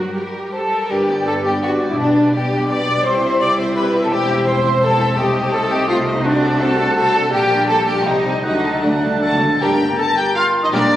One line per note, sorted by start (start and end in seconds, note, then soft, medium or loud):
0.00 0.12 F#3 medium
0.00 0.12 F#4 medium
0.12 0.70 G3 soft
0.12 0.71 G4 soft
0.12 0.49 A#4 soft
0.51 0.87 A4 medium
0.51 0.92 A4 medium
0.51 0.59 C5 soft
0.51 0.87 A5 medium
0.71 0.90 A#4 soft
0.90 1.94 G1 medium
0.90 1.95 G2 medium
0.90 3.01 G3 medium
0.90 3.02 G3 medium
0.90 1.08 G3 soft
0.90 3.02 D4 medium
0.90 1.08 D4 medium
0.90 1.27 G4 medium
0.90 1.07 B4 medium
0.90 3.07 D5 soft
0.90 1.27 G5 medium
1.10 1.28 B3 soft
1.10 1.28 G4 soft
1.10 1.27 D5 soft
1.26 1.46 G3 medium
1.26 1.46 D4 soft
1.26 1.33 A4 medium
1.26 1.35 A4 medium
1.26 1.45 B4 soft
1.26 1.33 A5 medium
1.44 1.64 B3 soft
1.44 1.63 G4 medium
1.44 1.53 G4 medium
1.44 1.64 G4 soft
1.44 1.63 D5 soft
1.44 1.51 G5 medium
1.62 1.80 G3 soft
1.62 1.80 D4 soft
1.62 1.70 F#4 medium
1.62 1.91 F#4 medium
1.62 1.79 B4 medium
1.62 1.69 F#5 medium
1.81 1.99 B3 soft
1.81 1.99 G4 soft
1.81 1.99 D5 soft
1.89 1.98 E4 medium
1.89 1.99 E4 medium
1.89 1.98 E5 medium
1.98 3.06 B1 medium
1.98 3.05 B2 medium
1.98 2.16 B3 medium
1.98 2.34 D4 medium
1.98 2.33 D4 medium
1.98 2.16 G4 medium
1.98 2.15 B4 medium
1.98 2.33 D5 medium
2.17 2.35 G3 soft
2.17 2.35 B4 soft
2.17 2.34 D5 soft
2.34 2.52 B3 soft
2.34 2.71 G4 medium
2.34 2.70 G4 medium
2.34 2.53 G4 soft
2.34 2.52 B4 soft
2.34 2.70 G5 medium
2.52 2.71 G3 soft
2.52 2.71 B4 soft
2.52 2.70 D5 soft
2.69 2.87 B3 soft
2.69 2.87 G4 soft
2.69 2.86 B4 medium
2.69 3.05 D5 medium
2.69 3.07 D5 medium
2.69 3.06 D6 medium
2.88 3.06 G3 soft
2.88 3.06 B4 soft
2.88 3.06 D5 soft
3.04 4.10 C2 medium
3.04 4.10 C3 medium
3.04 5.14 G3 medium
3.04 4.13 G3 medium
3.04 4.09 E4 medium
3.04 3.22 E4 soft
3.04 3.23 G4 medium
3.04 3.40 C5 medium
3.04 3.42 C5 medium
3.04 5.20 E5 soft
3.04 3.22 G5 medium
3.04 3.41 C6 medium
3.23 3.41 C4 medium
3.23 3.41 E4 soft
3.23 3.41 E5 soft
3.40 3.58 E4 soft
3.40 3.59 G4 soft
3.40 3.58 D5 medium
3.40 3.60 D5 medium
3.40 3.58 G5 soft
3.40 3.48 D6 medium
3.57 3.77 C4 soft
3.57 3.75 E4 soft
3.57 3.75 C5 medium
3.57 3.76 C5 medium
3.57 3.76 E5 medium
3.57 3.76 C6 medium
3.75 3.93 E4 medium
3.75 3.93 G4 medium
3.75 4.02 B4 medium
3.75 3.88 B4 medium
3.75 3.93 G5 soft
3.75 3.83 B5 medium
3.93 4.12 C4 medium
3.93 4.11 E4 soft
3.93 4.11 E5 medium
4.02 4.06 A4 medium
4.02 4.12 A4 medium
4.02 4.11 A5 medium
4.11 5.15 E1 medium
4.11 5.15 E2 medium
4.11 5.17 C4 medium
4.11 5.18 C4 medium
4.11 4.29 E4 medium
4.11 4.46 G4 medium
4.11 4.28 G4 medium
4.11 4.47 G4 medium
4.11 4.28 G5 medium
4.11 4.47 G5 medium
4.28 4.47 C4 soft
4.28 4.46 E4 medium
4.28 4.46 E5 soft
4.46 4.64 E4 medium
4.46 4.65 G4 medium
4.46 4.81 C5 medium
4.46 4.82 C5 medium
4.46 4.64 G5 medium
4.46 4.82 C6 medium
4.64 4.83 C4 medium
4.64 4.82 E4 medium
4.64 4.82 E5 medium
4.82 4.99 E4 medium
4.82 4.99 G4 medium
4.82 5.18 A4 loud
4.82 5.20 A4 medium
4.82 4.99 G5 medium
4.82 5.17 A5 medium
4.98 5.18 C4 medium
4.98 5.18 E4 medium
4.98 5.17 E5 medium
5.16 7.33 C2 medium
5.16 7.32 C3 medium
5.16 7.29 A3 medium
5.16 5.34 A3 medium
5.16 6.24 D#4 medium
5.16 5.53 G4 medium
5.16 5.34 A4 medium
5.16 5.33 C5 medium
5.16 6.24 D#5 medium
5.16 5.53 G5 medium
5.33 5.53 C4 medium
5.33 5.53 C5 medium
5.33 5.52 D#5 medium
5.53 5.71 A3 medium
5.53 5.70 A4 medium
5.53 5.62 A4 medium
5.53 5.71 A4 medium
5.53 5.70 C5 medium
5.53 5.70 A5 medium
5.70 5.89 C4 medium
5.70 5.87 G4 medium
5.70 5.88 G4 medium
5.70 5.89 C5 medium
5.70 5.88 D#5 medium
5.70 5.89 G5 medium
5.88 6.06 A3 medium
5.88 6.00 F4 medium
5.88 5.96 F4 medium
5.88 6.06 A4 medium
5.88 6.05 C5 medium
5.88 5.95 F5 medium
6.07 6.23 C4 medium
6.07 6.25 C5 medium
6.07 6.25 D#5 medium
6.15 6.19 D#4 medium
6.15 6.25 D#4 medium
6.15 6.25 D#5 medium
6.24 6.42 C4 medium
6.24 6.62 D4 medium
6.24 6.61 D4 medium
6.24 7.30 F#4 medium
6.24 6.42 F#4 medium
6.24 6.42 C5 medium
6.24 6.60 D5 medium
6.24 7.30 F#5 medium
6.42 6.61 D4 medium
6.42 6.61 A4 medium
6.42 6.61 D5 medium
6.60 6.79 C4 medium
6.60 6.79 F#4 medium
6.60 6.95 A4 loud
6.60 6.95 A4 medium
6.60 6.79 C5 medium
6.60 6.95 A5 medium
6.78 6.96 D4 medium
6.78 6.96 A4 medium
6.78 6.97 D5 medium
6.96 7.13 C4 medium
6.96 7.13 F#4 medium
6.96 7.33 A4 medium
6.96 7.32 A4 loud
6.96 7.14 C5 medium
6.96 7.31 A5 medium
7.15 7.32 D4 medium
7.15 7.33 A4 medium
7.15 7.33 D5 medium
7.31 8.04 A#1 medium
7.31 8.05 A#2 medium
7.31 7.88 G3 medium
7.31 8.45 G3 medium
7.31 7.49 A#3 medium
7.31 7.69 G4 medium
7.31 7.49 G4 medium
7.31 7.68 G4 loud
7.31 8.45 G4 medium
7.31 7.49 A#4 medium
7.31 7.88 G5 medium
7.31 7.68 G5 medium
7.50 7.69 D4 medium
7.50 7.69 A#4 medium
7.50 7.69 D5 medium
7.68 7.88 A#3 medium
7.68 7.88 G4 medium
7.68 7.86 A4 medium
7.68 7.87 A4 loud
7.68 7.87 A#4 medium
7.68 7.87 A5 medium
7.86 8.06 D4 medium
7.86 8.05 G4 loud
7.86 7.95 G4 medium
7.86 8.07 A#4 medium
7.86 8.06 D5 medium
7.86 8.06 G5 medium
8.04 8.44 C2 medium
8.04 8.45 C3 medium
8.04 8.45 G3 medium
8.04 8.43 D#4 medium
8.04 8.23 D#4 medium
8.04 8.24 G4 medium
8.04 8.24 C5 medium
8.04 8.43 D#5 medium
8.04 8.45 G5 medium
8.24 8.45 C4 medium
8.24 8.44 D#4 medium
8.24 8.45 D#5 medium
8.43 9.40 D2 medium
8.43 8.79 D3 medium
8.43 8.51 D3 soft
8.43 8.63 F#3 medium
8.43 9.40 F#3 medium
8.43 8.82 A3 medium
8.43 8.84 D#4 medium
8.43 8.83 D#4 medium
8.43 8.63 F#4 medium
8.43 9.42 A4 medium
8.43 8.83 D#5 medium
8.43 8.83 F#5 medium
8.43 8.63 F#5 medium
8.52 8.59 D3 soft
8.60 8.67 D3 soft
8.65 8.75 D3 soft
8.65 8.84 A3 medium
8.65 8.84 A4 medium
8.65 8.84 A5 medium
8.76 8.83 D3 soft
8.82 8.91 D3 soft
8.82 9.03 F#3 medium
8.82 9.40 A3 medium
8.82 8.91 A3 medium
8.82 9.41 D4 medium
8.82 9.21 D4 medium
8.82 9.03 F#4 medium
8.82 9.40 D5 medium
8.82 9.21 F#5 medium
8.82 9.04 F#5 medium
8.92 8.99 D3 medium
9.00 9.07 D3 medium
9.00 9.22 G3 medium
9.00 9.22 A5 medium
9.04 9.23 A3 medium
9.04 9.23 A4 soft
9.16 9.23 D3 medium
9.22 9.31 D3 medium
9.22 9.30 F#3 medium
9.22 9.41 F#3 medium
9.22 9.41 F#4 medium
9.22 9.58 A4 medium
9.22 9.41 F#5 medium
9.22 9.58 A5 medium
9.22 9.62 A5 medium
9.22 9.41 A5 medium
9.32 9.38 D3 medium
9.39 9.46 D3 medium
9.39 9.60 D3 medium
9.39 9.61 A3 medium
9.39 9.61 A4 medium
9.39 9.61 A5 medium
9.48 9.55 D3 medium
9.60 9.92 G1 medium
9.60 9.92 G2 medium
9.60 10.68 G3 medium
9.60 9.79 A#3 medium
9.60 9.79 D4 medium
9.60 9.98 G4 medium
9.60 9.79 G4 medium
9.60 10.68 A#4 medium
9.60 9.78 A#4 medium
9.60 9.98 G5 medium
9.60 10.32 A#5 medium
9.98 10.07 A4 medium
9.98 10.16 A5 loud
9.98 10.17 A5 medium
9.98 10.07 A5 medium
10.17 10.37 G4 medium
10.17 10.35 G5 medium
10.17 10.36 G5 loud
10.17 10.26 G5 medium
10.35 10.65 F4 medium
10.35 10.48 F5 medium
10.35 10.43 F5 loud
10.35 10.48 F5 medium
10.35 10.72 C6 medium
10.63 10.74 D#4 medium
10.63 10.71 D#5 medium
10.63 10.67 D#5 medium
10.63 10.68 D#5 medium
10.71 10.96 A#1 medium
10.71 10.96 A#2 medium
10.71 10.90 G3 medium
10.71 10.96 G3 medium
10.71 10.90 A#3 medium
10.71 10.96 D4 medium
10.71 10.96 G4 medium
10.71 10.90 G4 medium
10.71 10.90 A#4 medium
10.71 10.96 D5 medium
10.71 10.96 D5 loud
10.71 10.96 A#5 medium